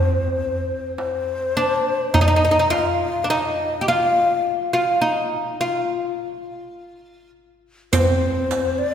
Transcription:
Already playing: C4 C5
0.97 C5, darbuka tek
1.57 D4
2.13 D#4 D#5, darbuka dum
2.21 D#4
2.28 D#4
2.36 D#4
2.45 D#4
2.51 D#4
2.59 D#4
2.70 F4 F5, darbuka tek
2.79 D#5
2.86 F5
3.23 D4 F5
3.30 D#4 D#5, darbuka tek
3.81 G4
3.88 F4 F5
4.73 F4 F5
5.01 D#4
5.61 F4
7.93 C4 C5, riq, darbuka dum
8.00 B4
8.08 C5
8.51 riq, darbuka tek
8.78 D5

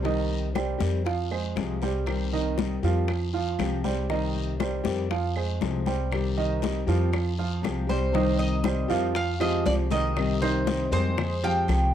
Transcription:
Already playing: C2
0.02 C3 D#3 G3 C4 D#4 G4 D#5, high bongo, high conga, long guiro
0.30 high conga
0.53 D#3 G3 C4 G4 C5, high bongo, high conga, short guiro, claves
0.78 F2 D#3 G3 C4 G4, high conga, short guiro
1.04 F3 F4 F5, muted nylon-string guitar stroke, high bongo, high conga, long guiro
1.31 G#3 G#4 C5, high conga, claves
1.55 C2 C3 F3 G#3 C4 G4, high bongo, low bongo, high conga, short guiro
1.81 G3 G#3 C4 G4 C5, high conga, short guiro
2.06 C3 D#3 G3 C4 G4, high bongo, high conga, long guiro, claves
2.33 D#3 D#4 D#5, high bongo, high conga
2.58 D#3 G3 C4 G4, high bongo, high conga, short guiro
2.83 F2 D#3 F3 G3 C4 F4 G4 F5, high bongo, high conga, short guiro
3.08 muted nylon-string guitar stroke, high bongo, high conga, long guiro, claves
3.33 F3 F4 F5, high bongo, high conga
3.59 C2 C3 F3 G#3 C4 G4, high bongo, low bongo, high conga, short guiro, claves
3.84 G3 G#3 C4 G4 C5, high conga, short guiro
4.09 C3 D#3 G3 C4 D#4 G4 D#5, high bongo, long guiro
4.35 high conga
4.59 D#3 G3 C4 G4 C5, high bongo, high conga, short guiro, claves
4.84 F2 D#3 G3 C4 G4, high conga, short guiro
5.10 F3 F4 F5, muted nylon-string guitar stroke, high bongo, high conga, long guiro
5.36 G#3 G#4 C5, high conga, claves
5.61 C2 C3 F3 G#3 C4 G4, high bongo, low bongo, high conga, short guiro
5.86 G3 G#3 C4 G4 C5, high conga, short guiro
6.11 C3 D#3 G3 C4 G4, high bongo, high conga, long guiro, claves
6.37 D#3 D#4 D#5, high bongo, high conga
6.62 D#3 G3 C4 G4, high bongo, high conga, short guiro
6.87 F2 D#3 F3 G3 C4 F4 G4 F5, high bongo, high conga, short guiro
7.12 muted nylon-string guitar stroke, high bongo, high conga, long guiro, claves
7.39 F3 F4 F5, high bongo, high conga
7.62 C2 C3 F3 G#3 C4 G4, high bongo, low bongo, high conga, short guiro, claves
7.87 G3 G#3 C4 G4 C5, high conga, short guiro
8.12 C3 D#3 G3 C4 D#4 G4 D#5, high bongo, high conga, long guiro
8.39 D#5, high bongo, high conga
8.64 G3 G4 C5, high bongo, high conga, short guiro, claves
8.88 F2 D#3 F3 G3 C4 F4 G4 F5, high bongo, high conga, short guiro
9.15 F5, muted nylon-string guitar stroke, high bongo, high conga, long guiro
9.40 F3 G#3 C4 F4 G4 D#5 F5, high conga, claves
9.65 C2 F3 G#3 C4 G4 D5, high bongo, low bongo, high conga, short guiro
9.90 D#3 D#4 D#5, high conga, short guiro
10.16 C3 D#3 G3 C4 G4, high bongo, long guiro, claves
10.42 D#3 D#4 C5 D#5, high bongo, high conga
10.67 high bongo, high conga, short guiro
10.92 F2 D#3 G3 G#3 C4 G4 G#4 C5, high bongo, short guiro
11.18 muted nylon-string guitar stroke, high bongo, high conga, low conga, long guiro, claves
11.43 F3 G#3 C4 F4 G4 F5 G5, high bongo, high conga
11.68 C2 F3 G#3 C4 G4, high bongo, low bongo, high conga, short guiro, claves

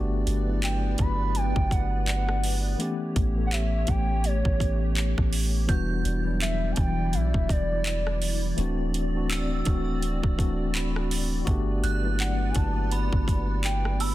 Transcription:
Already playing: G1 A3 B3 D4 F#4 G4 B4 D5
0.27 G1, closed hi-hat
0.46 F#3 A3 B3 D4 E4
0.63 G5, clap, closed hi-hat
0.98 G1 B5, kick, closed hi-hat
1.35 G5, closed hi-hat
1.56 G1, kick
1.71 F#5, kick, closed hi-hat
2.08 F#5, clap, closed hi-hat
2.29 cross-stick
2.44 open hi-hat
2.78 E3 A3 B3 C#4 G4 C#5, closed hi-hat
3.16 A1, kick, closed hi-hat
3.35 E3 A3 B3 C#4 A4
3.46 F#5
3.52 E5, clap, closed hi-hat
3.86 A1 E3 A3 B3 C#4 G4 G5, kick, closed hi-hat
4.24 C#5, closed hi-hat
4.45 A1, kick
4.58 E3 A3 B3 C#4 G4, kick, closed hi-hat
4.97 clap, closed hi-hat
5.18 A1, kick, cross-stick
5.33 open hi-hat
5.67 E1 E3 G3 B3 D4 E4 F#4 D5 G6, kick, closed hi-hat
6.05 E1, closed hi-hat
6.24 E3 F#3 B3 D4
6.32 G3
6.42 E5, clap, closed hi-hat
6.71 A5
6.76 E1 G5, kick, closed hi-hat
7.13 B1 E5, closed hi-hat
7.34 E1, kick
7.49 E1 D5, kick, closed hi-hat
7.86 D5, clap, closed hi-hat
8.07 cross-stick
8.22 open hi-hat
8.56 D1 E3 A3 C4 D4 F#4, closed hi-hat
8.94 closed hi-hat
9.13 E3 A3 C4 D4 F#4
9.30 E6, clap, closed hi-hat
9.65 D1 E3 A3 C4 D4 F#4, kick, closed hi-hat
10.02 closed hi-hat
10.23 D1, kick
10.37 D1 E3 A3 C4 D4 F#4, kick, closed hi-hat
10.75 B5, clap, closed hi-hat
10.96 cross-stick
11.11 open hi-hat
11.45 G1 A3 B3 D4 F#4 G4 B4 D5, kick, closed hi-hat
11.83 G1 F#6, closed hi-hat
12.02 F#3 A3 A#3 D4 E4
12.11 B3
12.20 F#5, clap, closed hi-hat
12.50 G#5
12.55 G1 A5, kick, closed hi-hat
12.91 B5, closed hi-hat
13.13 G1, kick
13.28 kick, closed hi-hat
13.64 G5, clap, closed hi-hat
13.85 cross-stick
14.00 B5 E6, open hi-hat

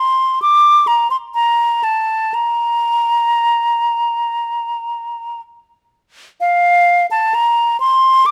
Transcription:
Already playing: C6
0.42 D6
0.87 A#5
1.11 C6
1.34 A#5
1.84 A5
2.34 A#5
6.40 F5
7.11 A5
7.34 A#5
7.80 C6
8.26 D6

